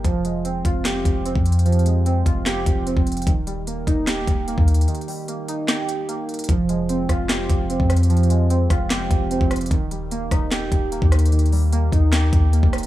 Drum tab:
HH |x-----------x-----------x-----------x-----------x-----------x-----------x-----------x---x---x---|x---x---x---x-----------x-----------x-----------x-----------x-----------x-----------x--x--x--x--|x-----------x-----------x-----------x-----------x-----------x-----------x-----------x---x---x---|x---x---x---o-----------x-----------x-----------x-----------x-----------x-----------x--x--x--x--|
CP |------------------------------------------------x-----------------------------------------------|------------------------------------------------x-----------------------------------------------|------------------------------------------------x-----------------------------------------------|------------------------------------------------x-----------------------------------------------|
SD |------------------------------------------------o-----------------------------------------------|------------------------------------------------o-----------------------------------------------|------------------------------------------------o-----------------------------------------------|------------------------------------------------o-----------------------------------------------|
BD |o-----------------------------------o-----------------------o-----------------o-----------------|------------------------------------o-----------------------o-----------------o-----------------|o-----------------------------------o-----------------------o-----------------o-----------------|------------------------------------------------------------------------------------------------|

HH |x-----------x-----------x-----------x-----------x-----------x-----------x-----------x---x---x---|x---x---x---x-----------x-----------x-----------x-----------x-----------x-----------x--x--x--x--|x-----------x-----------x-----------x-----------x-----------x-----------x-----------x---x---x---|x---x---x---o-----------x-----------x-----------x-----------x-----------x-----------x--x--x-----|
CP |------------------------------------------------x-----------------------------------------------|------------------------------------------------x-----------------------------------------------|------------------------------------------------x-----------------------------------------------|------------------------------------------------x-----------------------------------------------|
SD |------------------------------------r-----------o-----------------------------------r-----------|------------------------------------r-----------o-----------------------------------r-----------|------------------------------------r-----------o-----------------------------------r-----------|------------------------------------------------o-----------------------------------r-----------|
BD |o-----------------------------------o-----------------------o-----------------o-----------------|------------------------------------o-----------------------o-----------------o-----------------|o-----------------------------------o-----------------------o-----------------o-----------------|------------------------------------o-----------------------o-----------------o-----------------|